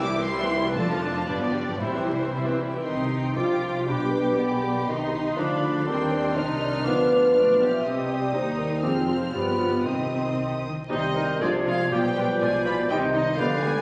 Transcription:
Already playing: double bass section C2, cello section C2
0.02 viola section G3 E4, violin section E4 C5 D6
0.14 viola section E3 C4, violin section G4 E5
0.25 viola section G3 E4, violin section E4 C5 C6
0.39 viola section E3 C4, violin section G4 E5
0.53 viola section G3 E4, violin section E4 C5
0.64 viola section E3 C4, violin section G4 E5
0.74 double bass section F1, cello section F2, viola section D3, violin section F4 D5 A5
0.78 viola section D4
0.90 viola section F3 F4, violin section A4 F5
1.02 viola section D3 D4, violin section F4 D5
1.14 viola section F3 F4, violin section A4 F5
1.27 double bass section G1, cello section G2, viola section G3 D4, violin section F4 B4 D5
1.39 viola section F3 B3, violin section G4 D5
1.54 viola section G3 D4, violin section F4 B4
1.66 viola section F3 B3, violin section G4 D5
1.78 double bass section C2, cello section C3, viola section G3 E4, violin section E4 C5
1.92 viola section E3 C4, violin section G4 E5
2.07 viola section G3 E4, violin section E4 C5
2.18 viola section E3 C4, violin section G4 E5
2.32 viola section G3 E4, violin section E4 C5
2.46 viola section E3 C4, violin section G4 E5
2.59 viola section G3 E4, violin section E4 C5
2.72 viola section E3 C4, violin section G4 E5
2.83 double bass section C2, cello section C3, bassoon D#3, clarinet C4, french horn section D#4, viola section D#4, violin section G5 C6, flute C6
3.11 french horn section C4
3.35 double bass section C2, cello section C3, bassoon F3, french horn section D4, clarinet F4, viola section F4, violin section D6, flute D6
3.62 french horn section F4
3.87 double bass section B1, cello section B2, bassoon G3, clarinet D4, french horn section G4, viola section G4, violin section G5 D6, flute B5
4.10 french horn section B4
4.37 clarinet B3, french horn section G#4, violin section D5, flute B5
4.62 french horn section B4
4.87 double bass section C2, cello section C3, bassoon D#3, clarinet D#4, viola section D#4, french horn section G4, violin section D#5 C6, flute C6
5.13 french horn section D#4
5.35 double bass section D2, cello section D3, bassoon F3, viola section D4, clarinet D4, french horn section F4, violin section F5 B5
5.40 flute D6
5.62 french horn section G#4
5.86 double bass section D#2, cello section D#3, bassoon G3, viola section C4, french horn section A#4, violin section G5 C6, flute D6
6.12 french horn section D5
6.35 double bass section C2, cello section C3, bassoon D#3, viola section D#4, french horn section C5, violin section D#5 F6, flute C6
6.62 french horn section D5
6.84 double bass section D2, cello section D3, bassoon F3, clarinet B3, viola section D4, french horn section B4, violin section F5, flute D6
7.35 double bass section B1, cello section B2, clarinet A3, viola section D4, violin section D5, flute D6
7.60 clarinet B3, viola section G4, french horn section E5
7.84 double bass section C2, cello section C3, bassoon G3, clarinet C4, violin section C5 D#6, french horn section D#5, flute C6
8.10 french horn section D5
8.33 double bass section D#2, cello section D#2, bassoon G3, viola section D#4, clarinet D#4, french horn section C5, flute D#6
8.58 french horn section A#4
8.82 double bass section F1, cello section F2, bassoon F3, viola section C4, clarinet C4, french horn section G#4, flute D6, violin section F6
9.07 french horn section F4, flute C6
9.33 double bass section G1, cello section G2, bassoon F3, viola section B3, clarinet B3, french horn section G4, violin section D5, flute B5
9.60 french horn section F4
9.84 double bass section C2, cello section C3, bassoon D#3, clarinet C4, viola section C4, french horn section D#4, violin section D#5 D#6, flute C6
10.39 cello section C3
10.66 cello section D#3
10.89 double bass section C2, cello section C3, french horn section D#3, viola section G3 D#4, bassoon G3, violin section D#4 D#5, clarinet C5, cor anglais C5, flute G6
11.16 viola section G3 D#4, clarinet A#4
11.40 double bass section C2, cello section C3, french horn section D3, bassoon F3, viola section G#3 F4, violin section D4 D5, clarinet G#4, cor anglais D5, flute G#6
11.65 french horn section F3, viola section G#3 F4, violin section F4 F5
11.91 double bass section B1, cello section B2, bassoon F3, french horn section G3, viola section G3 F4, violin section G4 G5, clarinet G4, cor anglais D5, flute G6
12.16 viola section G3 F4, clarinet B4
12.40 double bass section B1, cello section B2, viola section G3 F4, french horn section G#3, violin section G#4 G#5, clarinet D5
12.65 viola section G3 F4, french horn section B3, violin section B4 B5
12.89 double bass section C2, cello section C3, bassoon D#3, viola section G3 D#4, french horn section G3, violin section G4 G5, cor anglais C5, clarinet D#5, flute G6
13.13 french horn section D#3, viola section G3 D#4, violin section D#4 D#5
13.37 double bass section D2, bassoon D3, cello section D3, french horn section F3, viola section G3 B3, violin section F4 F5, cor anglais B4, clarinet D5, flute G6
13.61 viola section G3 B3, french horn section G#3, violin section G#4 G#5

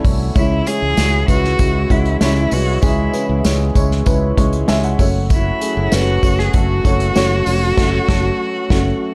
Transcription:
Already playing: analog synth pad E3 A3 E4, upright piano A3 C#4 E4 C#5 D5 E5 F#5 G#5 A5 B5
0.04 fingered electric bass C2, upright piano A3 C#4 E4 C#5, kick, open hi-hat
0.35 fingered electric bass C#2, upright piano C#3 G#3 C#4 E4 C#5, analog synth pad E3 G#3, cello E4, kick, closed hi-hat, tambourine
0.66 upright piano G#3 C#4 E4 C#5, cello G#4, closed hi-hat, tambourine
0.82 fingered electric bass C#2
0.97 fingered electric bass C#2, upright piano G#3 C#4 E4 F#4, snare, closed hi-hat, tambourine
1.28 fingered electric bass C#2, upright piano G#3 C#4 E4 B4, cello F#4, kick, closed hi-hat, tambourine
1.44 snare
1.59 fingered electric bass C#2, upright piano G#3 C#4 E4 F#4, kick, closed hi-hat, tambourine
1.90 fingered electric bass C#2, upright piano G#3 C#4 E4 F#4, cello E4, kick, closed hi-hat
2.05 closed hi-hat
2.21 fingered electric bass C#2, upright piano G#3 C#4 E4 C#5, cello E4, snare, closed hi-hat, tambourine
2.36 closed hi-hat
2.51 fingered electric bass C2, upright piano G#3 C#4 E4 B4, cello F#4, open hi-hat, tambourine
2.82 fingered electric bass C#2, upright piano C#3 G#3 C#4 E4 G#4, cello E4, kick, closed hi-hat, tambourine
3.13 upright piano G#3 C#4 E4 B4, closed hi-hat, tambourine
3.29 fingered electric bass C#2
3.44 fingered electric bass C#2, upright piano G#3 C#4 E4 C#5, snare, closed hi-hat, tambourine
3.75 fingered electric bass C#2, upright piano G#3 C#4 E4 C#5, kick, closed hi-hat, tambourine
3.91 snare
4.06 fingered electric bass C#2, upright piano G#3 C#4 E4 B4, kick, closed hi-hat, tambourine
4.37 fingered electric bass C#2, upright piano G#3 C#4 E4 C#5, kick, closed hi-hat
4.52 closed hi-hat
4.68 fingered electric bass C#2, upright piano G#3 C#4 E4 E5 G#5, snare, closed hi-hat, tambourine
4.83 upright piano F#5, closed hi-hat
4.99 fingered electric bass F#1, analog synth pad F#3 A3 F#4, upright piano A3 C#4 F#4 C#5, kick, open hi-hat, tambourine
5.30 cello E4, kick, closed hi-hat, tambourine
5.61 upright piano A3 C#4 F#4 G#4, closed hi-hat, tambourine
5.77 fingered electric bass F#1
5.92 fingered electric bass F#1, upright piano A3 C#4 F#4 B4, cello F#4, snare, closed hi-hat, tambourine
6.23 fingered electric bass F#1, upright piano A3 C#4 F#4 C#5, kick, closed hi-hat, tambourine
6.39 cello G#4, snare
6.53 fingered electric bass F#1, upright piano A3 C#4 F#4 A4, cello F#4, kick, closed hi-hat
6.85 fingered electric bass F#1, upright piano A3 C#4 F#4 C#5, kick, closed hi-hat
7.00 closed hi-hat
7.15 fingered electric bass F#1, upright piano A3 C#4 F#4 C#5, snare, closed hi-hat, tambourine
7.46 fingered electric bass F1, upright piano A3 C#4 F#4 C#5, open hi-hat, tambourine
7.77 fingered electric bass F#1, upright piano A3 C#4 F#4, kick, snare, crash
8.08 fingered electric bass F#1, upright piano A3 C#4 F#4 A4, kick, snare
8.70 fingered electric bass F#1, upright piano A3 C#4 F#4, kick, snare

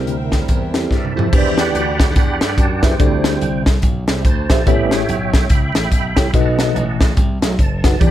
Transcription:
Already playing: tine electric piano C3 C4 E4 G4 A#4, tonewheel organ G3 C4 E4 A#4, string section A#4 C5 E5 G5
0.07 slap bass D2, closed hi-hat
0.32 kick, snare, closed hi-hat
0.48 slap bass E2, kick, closed hi-hat
0.74 tine electric piano C4 E4 G4 A4, snare, closed hi-hat
0.91 slap bass G2, tonewheel organ A#4 D5 E5 A5, kick, snare
1.05 mid tom
1.16 slap bass F2, tine electric piano C4 E4 G4 A4, tonewheel organ C5 E5, floor tom
1.32 slap bass E2, tine electric piano E3 D4 E4 G4 B4 C5, tonewheel organ D5 G5 B5, kick, crash
1.38 tine electric piano D5
1.57 tonewheel organ D4 G4 D5 F#5 G5 B5, snare, closed hi-hat
1.75 slap bass D2, closed hi-hat
1.99 tonewheel organ D5, kick, snare, closed hi-hat
2.16 slap bass E2, tonewheel organ D5 G5 B5, kick, closed hi-hat
2.41 slap bass G2, snare, closed hi-hat
2.57 slap bass F#2, tonewheel organ A5, kick, closed hi-hat
2.83 tine electric piano D4 E4 G4 B4 E5, tonewheel organ C5 G5, kick, snare, closed hi-hat
3.00 slap bass D2, tine electric piano D3 D4 G4 A4 C5 D5, tonewheel organ G3 C4 E4, kick, closed hi-hat
3.24 snare, closed hi-hat
3.41 slap bass C2, closed hi-hat
3.66 kick, snare, closed hi-hat
3.82 slap bass B1, kick, closed hi-hat
4.08 slap bass C2, tonewheel organ G3 C4 E4, snare, closed hi-hat
4.25 slap bass D2, tonewheel organ C5 A5, kick, closed hi-hat
4.50 slap bass A#1, tine electric piano D4 G4 A4 C5 E5, kick, snare, closed hi-hat
4.67 slap bass A1, tine electric piano A2 E4 G4 A4 C#5 E5, tonewheel organ G3 B3 C#4 E5 G5 B5, kick, closed hi-hat
4.91 tonewheel organ C#5 E5 G5, snare, closed hi-hat
5.09 slap bass B1, closed hi-hat
5.33 tonewheel organ C#5, kick, snare, closed hi-hat
5.49 slap bass C#2, tonewheel organ E5 G5 B5, kick, closed hi-hat
5.75 slap bass A1, snare, closed hi-hat
5.92 slap bass B1, tonewheel organ E5 G5 B5, kick, closed hi-hat
6.17 slap bass C2, tine electric piano E4 G4 A4 C#5 G5, kick, snare, closed hi-hat
6.33 slap bass B1, tine electric piano B2 D#4 F#4 A4 B4 D#5, tonewheel organ D#5 F#5 A5, kick, closed hi-hat
6.58 tonewheel organ F#3 A3 D#4, snare, closed hi-hat
6.76 slap bass A1, closed hi-hat
7.01 kick, snare, closed hi-hat
7.17 slap bass C2, kick, closed hi-hat
7.42 slap bass B1, tonewheel organ F#3 A3 D#4, snare, closed hi-hat
7.59 slap bass F#1, tonewheel organ A5, kick, closed hi-hat
7.84 tine electric piano D#4 F#4 A4 B4 F#5, tonewheel organ A5, kick, snare, closed hi-hat
7.99 slap bass E2, tonewheel organ E3 G3 D4 D5 G5 B5, tine electric piano E3 D4 E4 G4 B4 D5, kick, closed hi-hat

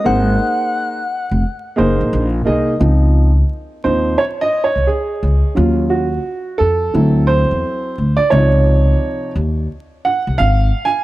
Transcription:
0.04 upright bass G#1, upright piano A#3 D#4 G#4 C5, soft synth lead F#5
1.31 upright bass F1
1.76 upright bass F#1, upright piano A#3 D#4 G#4 C5
2.01 upright bass A#1
2.13 upright bass A#1
2.45 upright bass C2, upright piano A#3 D#4 G#4 D#5
2.79 upright bass C#2, upright piano F3 C4 D#4
3.84 upright bass D#2, upright piano F3 C4 D#4 C5
4.18 upright piano C#5
4.41 upright piano D#5
4.64 upright piano C#5
4.76 upright bass C2
4.87 upright piano G#4
5.23 upright bass C#2
5.55 upright bass D#2, upright piano F#3 C#4 F4
5.90 upright piano F#4
6.58 upright bass F2, upright piano A4
6.94 upright bass D2, upright piano F#3 C4 E4
7.27 upright piano C5
7.51 upright bass E2
7.98 upright bass D2
8.17 upright piano D5
8.30 upright bass C#2, upright piano C3 F3 D#4 C#5
9.36 upright bass D#2
10.05 upright piano F#5
10.27 upright bass C2
10.38 upright bass G#1, upright piano F5
10.85 upright piano G#5

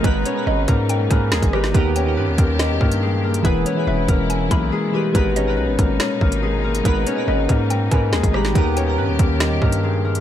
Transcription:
Already playing: string section A#2 B2 G#3 D#4, synth keys G#3 D#4 A#4 B4, harp G#3 A#3 C#4 G#4 A#4 C#5
0.03 808-style bass G#1, synth keys G#3 D#4 A#4, harp B3 B4, kick, closed hi-hat
0.07 synth keys B4
0.26 harp C#4 C#5, closed hi-hat
0.34 synth keys G#3 D#4 A#4
0.39 synth keys B4
0.47 808-style bass G#1, harp B3 B4, synth pluck D#5
0.68 808-style bass G#2, harp A#3 A#4, kick, closed hi-hat
0.89 synth pluck G5, closed hi-hat
1.08 808-style bass G#2, synth keys G#3 D#4 A#4, harp A#3 A#4, synth pluck G#5, kick, closed hi-hat
1.13 synth keys B4
1.32 808-style bass D#2, harp G#3 G#4, snare
1.42 808-style bass G#1, kick, closed hi-hat
1.51 harp G3 G4, synth keys G#3 D#4 A#4, cross-stick
1.55 synth keys B4
1.64 snare
1.72 808-style bass D#2, synth keys D#3 D#4 G4, string section D#3 G3 G4, harp B3 B4, kick, closed hi-hat
1.77 synth keys A#4
1.96 harp C#4 C#5, synth pluck G5, closed hi-hat
2.04 synth keys D#3 D#4 G4
2.08 synth keys A#4
2.17 808-style bass G2, harp B3 B4
2.28 808-style bass D#2
2.38 808-style bass D#2, harp A#3 A#4, kick, closed hi-hat
2.59 synth pluck D#5, snare, closed hi-hat
2.70 808-style bass E2
2.81 808-style bass G2, harp A#3 A#4, kick
2.92 closed hi-hat
3.02 harp G#3 G#4
3.24 harp A#3 A#4
3.34 closed hi-hat
3.42 808-style bass E1, string section B2 E3 G#3 E4, synth keys E3 E4 G#4, harp B3 B4, kick, closed hi-hat
3.47 synth keys B4
3.66 harp C#4 C#5, closed hi-hat
3.75 synth keys E3 E4 G#4
3.79 synth keys B4
3.87 808-style bass E1, harp B3 B4, synth pluck E5
4.08 808-style bass E1, harp A#3 A#4, kick, closed hi-hat
4.30 synth pluck G#5, closed hi-hat
4.49 808-style bass B1, synth keys E3 E4 G#4, harp A#3 A#4, synth pluck B5, kick, closed hi-hat
4.53 synth keys B4
4.72 harp G#3 G#4
4.92 synth keys E3 E4 G#4, harp G3 G4
4.96 synth keys B4
5.13 808-style bass G#1, string section A#2 D#4, synth keys G#3 D#4 A#4, harp B3 B4, kick, closed hi-hat
5.17 synth keys B4
5.36 harp C#4 C#5, synth pluck D#5, closed hi-hat
5.45 synth keys G#3 D#4 A#4
5.49 synth keys B4
5.57 808-style bass B1, harp B3 B4
5.68 808-style bass G#1
5.79 808-style bass G#1, harp A#3 A#4, kick, closed hi-hat
6.00 synth pluck C#5, snare, closed hi-hat
6.21 808-style bass G#1, harp A#3 A#4, kick
6.32 closed hi-hat
6.43 harp G#3 G#4
6.64 harp A#3 A#4
6.75 closed hi-hat
6.83 808-style bass G#1, synth keys G#3 D#4 A#4, harp B3 B4, kick, closed hi-hat
6.88 synth keys B4
7.07 harp C#4 C#5, closed hi-hat
7.15 synth keys G#3 D#4 A#4
7.20 synth keys B4
7.28 808-style bass G#1, harp B3 B4, synth pluck D#5
7.49 808-style bass G#2, harp A#3 A#4, kick, closed hi-hat
7.70 synth pluck G5, closed hi-hat
7.89 808-style bass G#2, synth keys G#3 D#4 A#4, harp A#3 A#4, synth pluck G#5, kick, closed hi-hat
7.94 synth keys B4
8.13 808-style bass D#2, harp G#3 G#4, snare
8.23 808-style bass G#1, kick, closed hi-hat
8.32 harp G3 G4, synth keys G#3 D#4 A#4, cross-stick
8.36 synth keys B4
8.45 snare
8.53 808-style bass D#2, synth keys D#3 D#4 G4, string section D#3 G3 G4, harp B3 B4, kick, closed hi-hat
8.58 synth keys A#4
8.77 harp C#4 C#5, synth pluck G5, closed hi-hat
8.85 synth keys D#3 D#4 G4
8.89 synth keys A#4
8.98 808-style bass G2, harp B3 B4
9.09 808-style bass D#2
9.19 808-style bass D#2, harp A#3 A#4, kick, closed hi-hat
9.40 synth pluck D#5, snare, closed hi-hat
9.51 808-style bass E2
9.62 808-style bass G2, harp A#3 A#4, kick
9.72 closed hi-hat
9.83 harp G#3 G#4
10.05 harp A#3 A#4
10.15 closed hi-hat

